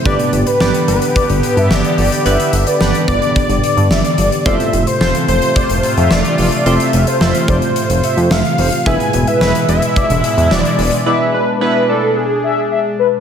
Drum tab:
HH |xxxx-xxxxxxx-xox|xxxx-xxxxxxx-xxx|xxxx-xxxxxxx-xox|xxxx-xxxxxxx-xox|
SD |----o-------o---|----o-------o---|----o-------o---|----o-------o---|
BD |o-------o-------|------o-o-------|o-------o-------|------o---------|

HH |xxxx-xxxxxxx-xox|----------------|
SD |----o-------o---|----------------|
BD |o-------o-------|----------------|